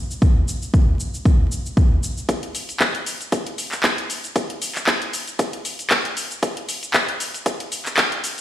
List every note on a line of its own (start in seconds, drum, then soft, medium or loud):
0.11 shaker soft
0.22 kick loud
0.22 shaker soft
0.48 shaker medium
0.62 shaker soft
0.74 kick loud
0.74 shaker soft
1.00 shaker medium
1.14 shaker soft
1.25 kick loud
1.25 shaker soft
1.52 shaker medium
1.66 shaker soft
1.77 kick loud
1.77 shaker soft
2.03 shaker medium
2.18 shaker soft
2.29 kick loud
2.29 closed hi-hat medium
2.29 shaker soft
2.43 closed hi-hat medium
2.55 open hi-hat loud
2.55 shaker medium
2.69 closed hi-hat soft
2.69 shaker soft
2.80 kick loud
2.80 clap loud
2.80 closed hi-hat medium
2.80 shaker soft
2.95 closed hi-hat medium
3.06 open hi-hat loud
3.06 shaker medium
3.21 closed hi-hat soft
3.21 shaker soft
3.32 kick loud
3.32 closed hi-hat medium
3.32 shaker soft
3.47 closed hi-hat medium
3.58 open hi-hat loud
3.58 shaker medium
3.72 clap soft
3.72 shaker soft
3.83 kick loud
3.83 clap loud
3.83 closed hi-hat medium
3.83 shaker soft
3.98 closed hi-hat medium
4.10 open hi-hat loud
4.10 shaker medium
4.24 closed hi-hat soft
4.24 shaker soft
4.36 kick loud
4.36 closed hi-hat medium
4.36 shaker soft
4.50 closed hi-hat medium
4.62 open hi-hat loud
4.62 shaker medium
4.75 clap soft
4.75 closed hi-hat soft
4.75 shaker soft
4.87 kick loud
4.87 clap loud
4.87 closed hi-hat medium
4.87 shaker soft
5.02 closed hi-hat medium
5.13 open hi-hat loud
5.13 shaker medium
5.28 closed hi-hat soft
5.28 shaker soft
5.39 kick loud
5.39 closed hi-hat medium
5.39 shaker soft
5.53 closed hi-hat medium
5.65 open hi-hat loud
5.65 shaker medium
5.79 closed hi-hat soft
5.79 shaker soft
5.90 kick loud
5.90 clap loud
5.90 closed hi-hat medium
5.90 shaker soft
6.05 closed hi-hat medium
6.17 open hi-hat loud
6.17 shaker medium
6.31 closed hi-hat soft
6.31 shaker soft
6.43 kick loud
6.43 closed hi-hat medium
6.43 shaker soft
6.57 closed hi-hat medium
6.69 open hi-hat loud
6.69 shaker medium
6.83 closed hi-hat soft
6.83 shaker soft
6.94 kick loud
6.94 clap loud
6.94 closed hi-hat medium
6.94 shaker soft
7.09 closed hi-hat soft
7.20 open hi-hat loud
7.20 shaker medium
7.34 closed hi-hat soft
7.34 shaker soft
7.46 kick loud
7.46 closed hi-hat medium
7.46 shaker soft
7.60 closed hi-hat medium
7.72 open hi-hat loud
7.72 shaker medium
7.86 clap soft
7.86 shaker soft
7.97 kick loud
7.97 clap loud
7.97 closed hi-hat medium
7.97 shaker soft
8.12 closed hi-hat medium
8.24 open hi-hat loud
8.24 shaker medium